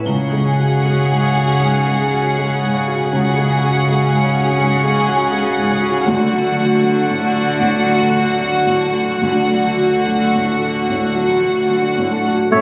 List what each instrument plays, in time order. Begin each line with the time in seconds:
Already playing: harp C#5
0.05 felt piano C#2, double bass section C#2, harp C#3, cello section C#3, viola section C#4, violin section G#4 F#5, triangle
0.32 felt piano G#3
0.45 harp G#3
0.59 felt piano F#4
0.83 felt piano G#3, harp F#4
1.11 felt piano G#2
1.22 harp C#5
1.37 felt piano F#4
1.60 felt piano G#2, harp C#4
1.87 felt piano G#3
1.98 harp G#3
2.13 felt piano F#4
2.37 felt piano G#3, harp F#4
2.62 felt piano G#2
2.74 harp C#5
2.87 felt piano F#4
3.12 double bass section C#2, felt piano C#2, harp C#3, cello section C#3, viola section C#4, violin section G#4 F#5
3.37 felt piano G#3
3.49 harp G#3
3.62 felt piano F#4
3.87 felt piano G#3, harp F#4
4.11 felt piano G#2
4.23 harp C#5
4.35 felt piano F#4
4.59 felt piano G#2, harp C#4
4.84 felt piano G#3
4.97 harp G#3
5.08 felt piano F#4
5.32 felt piano G#3, harp F#4
5.58 felt piano G#2
5.71 harp C#5
5.82 felt piano F#4
6.07 felt piano D2, double bass section D2, harp D3, cello section D3, viola section A3, violin section F#4 F#5
6.32 felt piano F#3
6.47 harp F#3
6.58 felt piano F#4
6.83 felt piano F#3, harp F#4
7.10 felt piano A2
7.22 harp A4
7.34 felt piano F#4
7.60 felt piano A2, harp D4
7.85 felt piano F#3
7.99 harp F#3
8.12 felt piano F#4
8.38 felt piano F#3, harp F#4
8.66 felt piano A2
8.80 harp A4
8.93 felt piano F#4
9.22 felt piano D2, double bass section D2, harp D3, cello section D3, viola section A3, violin section F#4 F#5
9.50 felt piano F#3
9.65 harp F#3
9.79 felt piano F#4
10.07 felt piano F#3, harp F#4
10.35 felt piano A2
10.48 harp A4
10.62 felt piano F#4
10.88 felt piano A2, harp D4
11.15 felt piano F#3
11.28 harp F#3
11.42 felt piano F#4
11.70 felt piano F#3, harp F#4
11.98 felt piano A2
12.11 harp A4
12.25 felt piano F#4
12.51 double bass section A1, felt piano A2, cello section A2, harp A2, french horn section A3 C#4, viola section A3, violin section E4 C#5, clarinet A4, oboe C#5, flute E5